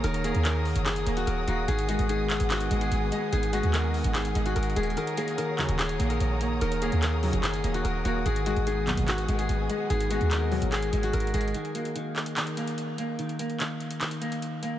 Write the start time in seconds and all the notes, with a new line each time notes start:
Already playing: A#3 G#4 C#5 F#5 A#5 D#6
0.04 D#1 D#3 A#4, closed hi-hat
0.14 closed hi-hat
0.24 A#3 G#4, closed hi-hat
0.35 D#2, closed hi-hat
0.45 D#3 A#4, clap, closed hi-hat
0.65 open hi-hat
0.76 F#1, closed hi-hat
0.86 D#3 G#4, clap, closed hi-hat
0.96 closed hi-hat
1.07 D#1 A#3, closed hi-hat
1.17 F#4, closed hi-hat
1.27 D#1 A#4, closed hi-hat
1.47 D#1 A#3 F#4, closed hi-hat
1.68 G#1 D#3 B3 G#4 G#5, closed hi-hat
1.79 closed hi-hat
1.89 G#3 F#4, closed hi-hat
1.99 G#1, closed hi-hat
2.09 D#3 G#4, closed hi-hat
2.30 clap, closed hi-hat
2.40 G#1, closed hi-hat
2.50 D#3 F#4, clap, closed hi-hat
2.61 closed hi-hat
2.71 G#1 G#3, closed hi-hat
2.81 G#4, closed hi-hat
2.91 G#1, closed hi-hat
3.12 G#3, closed hi-hat
3.33 G#1 D#3 G#4, closed hi-hat
3.43 closed hi-hat
3.53 G#3 F#4, closed hi-hat
3.63 D#2, closed hi-hat
3.74 D#3 A#4, clap, closed hi-hat
3.94 open hi-hat
4.04 G#1, closed hi-hat
4.15 D#3 G#4, clap, closed hi-hat
4.25 closed hi-hat
4.35 G#1 G#3, closed hi-hat
4.46 F#4, closed hi-hat
4.56 G#1 A#4, closed hi-hat
4.63 closed hi-hat
4.70 closed hi-hat
4.76 D#1 G#3 G#4, closed hi-hat
4.83 closed hi-hat
4.90 closed hi-hat
4.97 D#3 A#4 C#5 A#5 D#6, closed hi-hat
5.07 closed hi-hat
5.17 A#3 G#4, closed hi-hat
5.28 closed hi-hat
5.38 D#3 A#4, closed hi-hat
5.58 D#2 C#3 F#3, clap, closed hi-hat
5.69 D#1, closed hi-hat
5.79 D#3 G#4, clap, closed hi-hat
5.89 closed hi-hat
6.00 A#1 A#3, closed hi-hat
6.10 A#4, closed hi-hat
6.20 A#1, closed hi-hat
6.41 A#3, closed hi-hat
6.61 D#1 D#3 A#4, closed hi-hat
6.72 closed hi-hat
6.82 A#3 G#4, closed hi-hat
6.92 D#2, closed hi-hat
7.02 D#3 A#4, clap, closed hi-hat
7.23 D#2 C#3 F#3, open hi-hat
7.33 F#1, closed hi-hat
7.43 D#3 G#4, clap, closed hi-hat
7.54 closed hi-hat
7.64 D#1 A#3, closed hi-hat
7.74 F#4, closed hi-hat
7.85 D#1 A#4, closed hi-hat
8.05 D#1 A#3 F#4, closed hi-hat
8.26 G#1 D#3 B3 G#4 F#5 G#5, closed hi-hat
8.36 closed hi-hat
8.46 G#3 F#4, closed hi-hat
8.56 G#1, closed hi-hat
8.67 D#3 G#4, closed hi-hat
8.87 D#2 B2 F#3, clap, closed hi-hat
8.97 G#1, closed hi-hat
9.08 D#3 F#4, clap, closed hi-hat
9.18 closed hi-hat
9.28 G#1 G#3, closed hi-hat
9.39 G#4, closed hi-hat
9.49 G#1, closed hi-hat
9.70 G#3, closed hi-hat
9.90 G#1 D#3 G#4, closed hi-hat
10.00 closed hi-hat
10.11 G#3 F#4, closed hi-hat
10.21 D#2, closed hi-hat
10.31 D#3 A#4, clap, closed hi-hat
10.52 D#2 B2 F#3, open hi-hat
10.62 G#1, closed hi-hat
10.72 D#3 G#4, clap, closed hi-hat
10.82 closed hi-hat
10.93 G#1 G#3, closed hi-hat
11.03 F#4, closed hi-hat
11.13 G#1 A#4, closed hi-hat
11.20 closed hi-hat
11.27 closed hi-hat
11.34 G#1 G#3 G#4, closed hi-hat
11.41 closed hi-hat
11.48 closed hi-hat
11.54 D#3, closed hi-hat
11.65 closed hi-hat
11.75 A#3, closed hi-hat
11.85 closed hi-hat
11.96 D#3, closed hi-hat
12.16 clap, closed hi-hat
12.26 closed hi-hat
12.37 D#3, clap, closed hi-hat
12.47 closed hi-hat
12.57 A#3, closed hi-hat
12.67 closed hi-hat
12.78 closed hi-hat
12.98 A#3, closed hi-hat
13.19 D#3, closed hi-hat
13.29 closed hi-hat
13.39 A#3, closed hi-hat
13.50 closed hi-hat
13.60 D#3, clap, closed hi-hat
13.80 closed hi-hat
13.91 closed hi-hat
14.01 D#3, clap, closed hi-hat
14.11 closed hi-hat
14.22 A#3, closed hi-hat
14.32 closed hi-hat
14.42 closed hi-hat
14.63 A#3, closed hi-hat